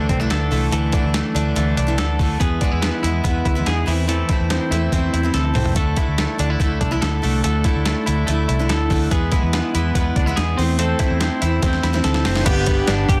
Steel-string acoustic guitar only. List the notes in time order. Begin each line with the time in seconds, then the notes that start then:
Already playing: D3 E3 A3 D4
0.20 D3 E3 A3 D4
0.51 D3 E3 A3 D4
0.71 D3 E3 A3 D4
0.92 D3 E3 A3 D4
1.35 D3 E3 A3 D4
1.55 D3 E3 A3 D4
1.87 D3 E3 A3 D4
2.19 D3 E3 A3 D4
2.40 E3 G#3 B3 E4
2.61 E3 G#3 B3 E4
3.03 E3 G#3 B3 E4
3.24 E3 G#3 B3 E4
3.55 E3 G#3 B3 E4
3.86 E3 A3 C4 E4
4.08 E3 A3 C4 E4
4.29 E3 A3 C4 E4
4.72 E3 A3 C4 E4
4.92 E3 A3 C4 E4
5.23 E3 A3 C4 E4
5.54 E3 A3 C4 E4
5.75 D3 A3 D4 E4
5.96 D3 A3 D4 E4
6.38 D3 A3 D4 E4
6.60 D3 A3 D4 E4
6.91 D3 A3 D4 E4
7.22 D3 A3 D4 E4
7.44 D3 A3 D4 E4
7.65 D3 A3 D4 E4
8.06 D3 A3 D4 E4
8.27 D3 A3 D4 E4
8.59 D3 A3 D4 E4
8.90 D3 A3 D4 E4
9.11 E3 G#3 B3 E4
9.32 E3 G#3 B3 E4
9.74 E3 G#3 B3 E4
9.95 E3 G#3 B3 E4
10.27 E3 G#3 B3 E4
10.58 E3 A3 C4 E4
10.78 E3 A3 C4 E4
11.00 E3 A3 C4 E4
11.42 E3 A3 C4 E4
11.62 E3 A3 C4 E4
11.93 E3 A3 C4 E4
12.25 E3 A3 C4 E4
12.46 G2 D3 G3 B3 D4 G4
12.87 G3 B3 D4 G4